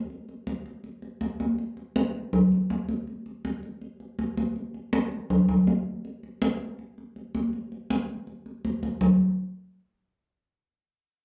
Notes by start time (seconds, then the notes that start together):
0.10 high conga
0.29 high conga
0.47 high conga
0.66 high conga
0.84 high conga
1.02 high conga
1.21 high conga
1.40 high conga
1.58 high conga
1.77 high conga
1.96 high conga
2.15 high conga
2.33 high conga, low conga
2.52 high conga
2.70 high conga
2.89 high conga
3.07 high conga
3.26 high conga
3.45 high conga
3.63 high conga
3.81 high conga
4.00 high conga
4.19 high conga
4.37 high conga
4.56 high conga
4.74 high conga
4.93 high conga
5.12 high conga
5.30 high conga, low conga
5.49 high conga, low conga
5.67 high conga
6.05 high conga
6.23 high conga
6.42 high conga
6.60 high conga
6.79 high conga
6.98 high conga
7.16 high conga
7.35 high conga
7.53 high conga
7.72 high conga
7.90 high conga
8.09 high conga
8.27 high conga
8.46 high conga
8.65 high conga
8.83 high conga
9.01 low conga